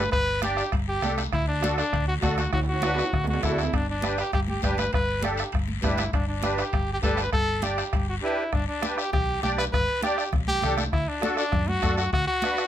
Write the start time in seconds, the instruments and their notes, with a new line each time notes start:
Already playing: trumpet B4
0.12 fingered electric bass G1, trumpet B4, bombo low, bombo rim, high conga, high timbale, long guiro
0.42 accordion D4 G4 D5, trumpet G4, bombo rim, high conga, high timbale, short guiro
0.57 bombo rim, high timbale, short guiro
0.72 fingered electric bass G1, bombo low, bombo rim, high conga, high timbale, long guiro
0.88 trumpet G4
1.01 fingered electric bass C2, accordion D4 G4 A4, bombo rim, high conga, high timbale, low timbale, short guiro
1.18 bombo rim, high conga, high timbale, short guiro
1.32 fingered electric bass D2, trumpet E4, bombo low, bombo rim, high conga, high timbale, long guiro
1.48 trumpet D4
1.62 accordion D4 F#4 A4, bombo rim, high conga, high timbale, short guiro
1.78 trumpet D4, bombo rim, high timbale, short guiro
1.93 fingered electric bass D2, bombo low, bombo rim, high conga, high timbale, long guiro
2.08 trumpet F#4
2.22 fingered electric bass D2, accordion D4 F#4 A4, trumpet F#4, bombo low, bombo rim, high conga, high timbale, low timbale, short guiro
2.38 trumpet F#4, bombo rim, high conga, high timbale, short guiro
2.53 fingered electric bass D2, trumpet F#4, bombo low, bombo rim, high conga, high timbale, long guiro
2.63 high timbale
2.69 trumpet F#4
2.74 high timbale
2.82 accordion D4 F#4 B4, bombo rim, high conga, high timbale, short guiro
2.94 low timbale, short guiro
2.99 bombo rim
3.04 high timbale
3.13 fingered electric bass D2, bombo low, bombo rim, high conga, long guiro
3.24 high conga, low timbale
3.29 trumpet F#4
3.34 low timbale
3.43 fingered electric bass D2, accordion D4 F#4 A4, trumpet E4, bombo low, bombo rim, high conga, low timbale, short guiro
3.58 bombo rim, short guiro
3.63 low timbale
3.73 fingered electric bass G1, trumpet D4, bombo low, bombo rim, high conga, high timbale, long guiro
3.90 trumpet D4
4.02 accordion D4 G4 B4, bombo rim, high conga, high timbale, short guiro
4.18 trumpet G4, bombo rim, high timbale, short guiro
4.32 fingered electric bass G1, trumpet G4, bombo low, bombo rim, high conga, high timbale, long guiro
4.48 trumpet G4, high conga
4.62 fingered electric bass G1, accordion D4 G4 B4, trumpet G4, bombo low, bombo rim, high conga, high timbale, short guiro
4.78 trumpet B4, bombo rim, high conga, high timbale, short guiro
4.93 fingered electric bass G1, trumpet B4, bombo low, bombo rim, high conga, high timbale, long guiro
5.22 accordion D4 G4 A4, trumpet G4, bombo rim, high conga, high timbale, short guiro
5.37 bombo rim, high timbale, short guiro
5.52 fingered electric bass G1, bombo low, bombo rim, high conga, high timbale, long guiro
5.68 high conga
5.82 fingered electric bass G1, accordion D4 G4 B4, trumpet E4, bombo low, bombo rim, high conga, high timbale, low timbale, short guiro
5.98 bombo rim, high conga, high timbale, short guiro
6.13 fingered electric bass G1, trumpet D4, bombo low, bombo rim, high conga, high timbale, long guiro
6.28 trumpet D4
6.42 accordion D4 G4 B4, bombo rim, high conga, high timbale, short guiro
6.58 trumpet G4, bombo rim, high timbale, short guiro
6.73 fingered electric bass G1, bombo low, bombo rim, high conga, high timbale, long guiro
6.94 trumpet G4
7.03 fingered electric bass G1, accordion D4 G4 B4, trumpet A4, bombo low, bombo rim, high conga, high timbale, short guiro
7.17 bombo rim, high timbale, short guiro
7.23 trumpet B4
7.33 fingered electric bass G1, trumpet A4, bombo low, bombo rim, high conga, high timbale, long guiro
7.62 accordion D4 G4 D5, trumpet G4, bombo rim, high conga, high timbale, short guiro
7.78 bombo rim, high timbale, short guiro
7.93 fingered electric bass G1, bombo low, bombo rim, high conga, high timbale, long guiro
8.09 trumpet F#4
8.22 accordion D4 G4 B4, trumpet E4
8.53 fingered electric bass G1, trumpet D4, bombo low, bombo rim, high conga, long guiro
8.68 trumpet D4
8.82 accordion D4 G4 B4, bombo rim, high conga, short guiro
8.98 trumpet G4, bombo rim, short guiro
9.13 fingered electric bass B1, trumpet G4, bombo low, bombo rim, high conga, low conga, long guiro
9.43 fingered electric bass B1, accordion D4 G4 D5, trumpet G4, bombo rim, high conga, short guiro
9.58 trumpet B4, bombo rim, short guiro
9.73 fingered electric bass G1, trumpet B4, bombo low, bombo rim, high conga, low conga, long guiro
10.03 accordion D4 G4 D5, trumpet G4, bombo rim, high conga, short guiro
10.18 bombo rim, short guiro
10.33 fingered electric bass B1, bombo low, bombo rim, high conga, low conga, long guiro
10.47 trumpet G4, high conga
10.62 fingered electric bass C2, accordion D4 G4 A4, bombo rim, high conga, low conga, short guiro
10.78 bombo rim, high conga, short guiro
10.93 fingered electric bass D2, trumpet E4, bombo low, bombo rim, high conga, long guiro
11.08 trumpet D4
11.21 accordion D4 F#4 A4, bombo rim, high conga, short guiro
11.37 trumpet D4, bombo rim, short guiro
11.52 fingered electric bass F#2, bombo low, bombo rim, high conga, low conga, long guiro
11.68 trumpet F#4, high conga
11.81 fingered electric bass F#2, accordion D4 F#4 A4, bombo low, bombo rim, high conga, short guiro
11.98 trumpet F#4, bombo rim, short guiro
12.13 fingered electric bass D2, trumpet F#4, bombo low, bombo rim, high conga, long guiro
12.27 trumpet F#4
12.42 accordion D4 F#4 B4, bombo rim, high conga, short guiro
12.57 bombo rim, short guiro